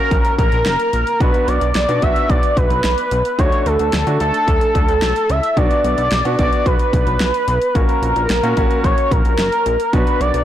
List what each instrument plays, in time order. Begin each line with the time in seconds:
Already playing: grand piano A#3 C#4 F#4, analog synth lead A#4, downlifter
0.11 analog synth bass A#1, kick, closed hi-hat
0.25 closed hi-hat
0.38 analog synth bass A#1, analog synth lead A#4, kick, closed hi-hat
0.52 analog synth bass A#1, closed hi-hat
0.66 analog synth bass F#1, snare, closed hi-hat
0.80 closed hi-hat
0.93 analog synth bass A#1, closed hi-hat
1.07 closed hi-hat
1.20 analog synth bass B1, grand piano B3 D4 F#4, analog synth lead B4, kick, closed hi-hat
1.34 closed hi-hat
1.48 analog synth bass B1, analog synth lead D5, closed hi-hat
1.61 analog synth bass B1, closed hi-hat
1.75 analog synth bass B1, analog synth lead D5, snare, closed hi-hat
1.89 analog synth bass B2, grand piano B3 D4 F#4, closed hi-hat
2.02 analog synth bass B1, grand piano B3 D4 F#4, analog synth lead E5, kick, closed hi-hat
2.16 closed hi-hat
2.30 analog synth bass B1, analog synth lead D5, kick, closed hi-hat
2.43 closed hi-hat
2.57 analog synth bass B1, analog synth lead B4, kick, closed hi-hat
2.70 analog synth bass B1, closed hi-hat
2.84 analog synth bass B1, snare, closed hi-hat
2.98 closed hi-hat
3.11 analog synth bass B1, closed hi-hat
3.25 closed hi-hat
3.39 analog synth bass D2, grand piano A3 D4 F#4, analog synth lead C#5, kick, closed hi-hat
3.52 closed hi-hat
3.66 analog synth bass D2, analog synth lead A4, closed hi-hat
3.79 analog synth bass D2, closed hi-hat
3.93 analog synth bass D2, snare, closed hi-hat
4.07 analog synth bass D3, grand piano A3 D4 F#4, closed hi-hat
4.20 analog synth bass D2, grand piano A3 D4 A4, analog synth lead A4, closed hi-hat
4.34 closed hi-hat
4.48 analog synth bass D2, kick, closed hi-hat
4.61 closed hi-hat
4.75 analog synth bass D2, kick, closed hi-hat
4.89 analog synth bass D2, closed hi-hat
5.02 analog synth bass B1, snare, closed hi-hat
5.16 closed hi-hat
5.30 analog synth bass C#2, analog synth lead E5, closed hi-hat
5.43 closed hi-hat
5.57 analog synth bass B1, grand piano B3 D4 F#4, analog synth lead D5, kick, closed hi-hat
5.71 closed hi-hat
5.84 analog synth bass B1, closed hi-hat
5.98 analog synth bass B1, closed hi-hat
6.11 analog synth bass B1, snare, closed hi-hat
6.25 analog synth bass B2, grand piano B3 D4 F#4, closed hi-hat
6.39 analog synth bass B1, grand piano B3 D4 F#4, analog synth lead D5, kick, closed hi-hat
6.53 closed hi-hat
6.66 analog synth bass B1, analog synth lead B4, kick, closed hi-hat
6.79 closed hi-hat
6.93 analog synth bass B1, kick, closed hi-hat
7.07 analog synth bass B1, closed hi-hat
7.20 analog synth bass B1, snare, closed hi-hat
7.34 closed hi-hat
7.48 analog synth bass B1, closed hi-hat
7.62 closed hi-hat
7.75 analog synth bass A#1, grand piano A#3 C#4 F#4, analog synth lead A#4, kick, closed hi-hat
7.89 closed hi-hat
8.02 analog synth bass A#1, closed hi-hat
8.16 analog synth bass A#1, closed hi-hat
8.30 analog synth bass A#1, snare, closed hi-hat
8.43 analog synth bass A#2, grand piano A#3 C#4 F#4, closed hi-hat
8.57 analog synth bass A#1, grand piano A#3 C#4 F#4, kick, closed hi-hat
8.71 closed hi-hat
8.84 analog synth bass A#1, analog synth lead C#5, kick, closed hi-hat
8.98 closed hi-hat
9.11 analog synth bass A#1, analog synth lead A#4, kick, closed hi-hat
9.25 analog synth bass A#1, closed hi-hat
9.39 analog synth bass F#1, snare, closed hi-hat
9.52 closed hi-hat
9.66 analog synth bass A#1, closed hi-hat
9.80 closed hi-hat
9.93 analog synth bass B1, grand piano B3 D4 F#4, analog synth lead B4, kick, closed hi-hat
10.07 closed hi-hat
10.20 analog synth bass B1, analog synth lead D5, closed hi-hat
10.34 analog synth bass B1, closed hi-hat